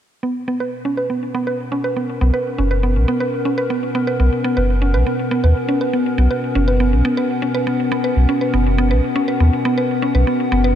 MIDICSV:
0, 0, Header, 1, 4, 480
1, 0, Start_track
1, 0, Tempo, 495868
1, 224, Time_signature, 4, 2, 24, 8
1, 10407, End_track
2, 0, Start_track
2, 0, Title_t, "Ambient pad"
2, 0, Program_c, 0, 92
2, 224, Note_on_c, 0, 47, 74
2, 359, Note_on_c, 0, 59, 69
2, 609, Note_on_c, 0, 61, 81
2, 746, Note_on_c, 0, 70, 84
2, 854, Note_on_c, 0, 78, 69
2, 10407, Note_off_c, 0, 47, 0
2, 10407, Note_off_c, 0, 59, 0
2, 10407, Note_off_c, 0, 61, 0
2, 10407, Note_off_c, 0, 70, 0
2, 10407, Note_off_c, 0, 78, 0
2, 10407, End_track
3, 0, Start_track
3, 0, Title_t, "Synth arpeggio sound"
3, 0, Program_c, 1, 84
3, 223, Note_on_c, 1, 59, 75
3, 318, Note_off_c, 1, 59, 0
3, 463, Note_on_c, 1, 59, 92
3, 558, Note_off_c, 1, 59, 0
3, 583, Note_on_c, 1, 71, 76
3, 678, Note_off_c, 1, 71, 0
3, 823, Note_on_c, 1, 61, 77
3, 880, Note_off_c, 1, 61, 0
3, 943, Note_on_c, 1, 71, 73
3, 1057, Note_off_c, 1, 71, 0
3, 1064, Note_on_c, 1, 59, 72
3, 1158, Note_off_c, 1, 59, 0
3, 1303, Note_on_c, 1, 59, 99
3, 1398, Note_off_c, 1, 59, 0
3, 1423, Note_on_c, 1, 71, 74
3, 1518, Note_off_c, 1, 71, 0
3, 1663, Note_on_c, 1, 61, 82
3, 1720, Note_off_c, 1, 61, 0
3, 1783, Note_on_c, 1, 71, 76
3, 1897, Note_off_c, 1, 71, 0
3, 1903, Note_on_c, 1, 59, 75
3, 1997, Note_off_c, 1, 59, 0
3, 2142, Note_on_c, 1, 59, 97
3, 2237, Note_off_c, 1, 59, 0
3, 2262, Note_on_c, 1, 71, 78
3, 2357, Note_off_c, 1, 71, 0
3, 2502, Note_on_c, 1, 61, 77
3, 2559, Note_off_c, 1, 61, 0
3, 2622, Note_on_c, 1, 71, 81
3, 2737, Note_off_c, 1, 71, 0
3, 2743, Note_on_c, 1, 59, 76
3, 2837, Note_off_c, 1, 59, 0
3, 2983, Note_on_c, 1, 59, 97
3, 3078, Note_off_c, 1, 59, 0
3, 3102, Note_on_c, 1, 71, 84
3, 3197, Note_off_c, 1, 71, 0
3, 3342, Note_on_c, 1, 61, 72
3, 3400, Note_off_c, 1, 61, 0
3, 3463, Note_on_c, 1, 71, 84
3, 3577, Note_off_c, 1, 71, 0
3, 3583, Note_on_c, 1, 59, 83
3, 3677, Note_off_c, 1, 59, 0
3, 3822, Note_on_c, 1, 59, 96
3, 3917, Note_off_c, 1, 59, 0
3, 3942, Note_on_c, 1, 71, 78
3, 4037, Note_off_c, 1, 71, 0
3, 4063, Note_on_c, 1, 59, 79
3, 4158, Note_off_c, 1, 59, 0
3, 4303, Note_on_c, 1, 59, 98
3, 4397, Note_off_c, 1, 59, 0
3, 4423, Note_on_c, 1, 71, 78
3, 4517, Note_off_c, 1, 71, 0
3, 4663, Note_on_c, 1, 61, 74
3, 4720, Note_off_c, 1, 61, 0
3, 4783, Note_on_c, 1, 71, 79
3, 4897, Note_off_c, 1, 71, 0
3, 4904, Note_on_c, 1, 59, 71
3, 4998, Note_off_c, 1, 59, 0
3, 5143, Note_on_c, 1, 59, 103
3, 5238, Note_off_c, 1, 59, 0
3, 5264, Note_on_c, 1, 71, 76
3, 5358, Note_off_c, 1, 71, 0
3, 5504, Note_on_c, 1, 61, 84
3, 5560, Note_off_c, 1, 61, 0
3, 5624, Note_on_c, 1, 71, 76
3, 5737, Note_off_c, 1, 71, 0
3, 5744, Note_on_c, 1, 59, 76
3, 5838, Note_off_c, 1, 59, 0
3, 5983, Note_on_c, 1, 59, 91
3, 6078, Note_off_c, 1, 59, 0
3, 6104, Note_on_c, 1, 71, 77
3, 6198, Note_off_c, 1, 71, 0
3, 6344, Note_on_c, 1, 61, 76
3, 6400, Note_off_c, 1, 61, 0
3, 6463, Note_on_c, 1, 71, 79
3, 6577, Note_off_c, 1, 71, 0
3, 6583, Note_on_c, 1, 59, 81
3, 6678, Note_off_c, 1, 59, 0
3, 6823, Note_on_c, 1, 59, 100
3, 6918, Note_off_c, 1, 59, 0
3, 6943, Note_on_c, 1, 71, 85
3, 7038, Note_off_c, 1, 71, 0
3, 7184, Note_on_c, 1, 61, 77
3, 7240, Note_off_c, 1, 61, 0
3, 7303, Note_on_c, 1, 71, 80
3, 7417, Note_off_c, 1, 71, 0
3, 7423, Note_on_c, 1, 59, 83
3, 7518, Note_off_c, 1, 59, 0
3, 7663, Note_on_c, 1, 59, 100
3, 7758, Note_off_c, 1, 59, 0
3, 7783, Note_on_c, 1, 71, 75
3, 7878, Note_off_c, 1, 71, 0
3, 8023, Note_on_c, 1, 61, 77
3, 8080, Note_off_c, 1, 61, 0
3, 8143, Note_on_c, 1, 71, 74
3, 8257, Note_off_c, 1, 71, 0
3, 8263, Note_on_c, 1, 59, 81
3, 8358, Note_off_c, 1, 59, 0
3, 8503, Note_on_c, 1, 59, 102
3, 8598, Note_off_c, 1, 59, 0
3, 8623, Note_on_c, 1, 71, 76
3, 8718, Note_off_c, 1, 71, 0
3, 8863, Note_on_c, 1, 61, 86
3, 8920, Note_off_c, 1, 61, 0
3, 8983, Note_on_c, 1, 71, 80
3, 9097, Note_off_c, 1, 71, 0
3, 9103, Note_on_c, 1, 59, 74
3, 9197, Note_off_c, 1, 59, 0
3, 9343, Note_on_c, 1, 59, 103
3, 9438, Note_off_c, 1, 59, 0
3, 9463, Note_on_c, 1, 71, 79
3, 9558, Note_off_c, 1, 71, 0
3, 9703, Note_on_c, 1, 61, 78
3, 9760, Note_off_c, 1, 61, 0
3, 9823, Note_on_c, 1, 71, 77
3, 9937, Note_off_c, 1, 71, 0
3, 9943, Note_on_c, 1, 59, 77
3, 10038, Note_off_c, 1, 59, 0
3, 10183, Note_on_c, 1, 59, 100
3, 10278, Note_off_c, 1, 59, 0
3, 10302, Note_on_c, 1, 71, 80
3, 10397, Note_off_c, 1, 71, 0
3, 10407, End_track
4, 0, Start_track
4, 0, Title_t, "Sub bass"
4, 0, Program_c, 2, 38
4, 2142, Note_on_c, 2, 35, 95
4, 2236, Note_off_c, 2, 35, 0
4, 2503, Note_on_c, 2, 30, 93
4, 2863, Note_on_c, 2, 35, 80
4, 2877, Note_off_c, 2, 30, 0
4, 2956, Note_off_c, 2, 35, 0
4, 4063, Note_on_c, 2, 35, 98
4, 4156, Note_off_c, 2, 35, 0
4, 4424, Note_on_c, 2, 30, 94
4, 4783, Note_on_c, 2, 35, 84
4, 4798, Note_off_c, 2, 30, 0
4, 4876, Note_off_c, 2, 35, 0
4, 5263, Note_on_c, 2, 39, 91
4, 5356, Note_off_c, 2, 39, 0
4, 5983, Note_on_c, 2, 35, 96
4, 6076, Note_off_c, 2, 35, 0
4, 6343, Note_on_c, 2, 30, 95
4, 6703, Note_on_c, 2, 35, 80
4, 6717, Note_off_c, 2, 30, 0
4, 6796, Note_off_c, 2, 35, 0
4, 7903, Note_on_c, 2, 35, 90
4, 7996, Note_off_c, 2, 35, 0
4, 8263, Note_on_c, 2, 30, 90
4, 8623, Note_on_c, 2, 35, 81
4, 8638, Note_off_c, 2, 30, 0
4, 8716, Note_off_c, 2, 35, 0
4, 9102, Note_on_c, 2, 39, 86
4, 9196, Note_off_c, 2, 39, 0
4, 9822, Note_on_c, 2, 35, 96
4, 9916, Note_off_c, 2, 35, 0
4, 10183, Note_on_c, 2, 30, 93
4, 10407, Note_off_c, 2, 30, 0
4, 10407, End_track
0, 0, End_of_file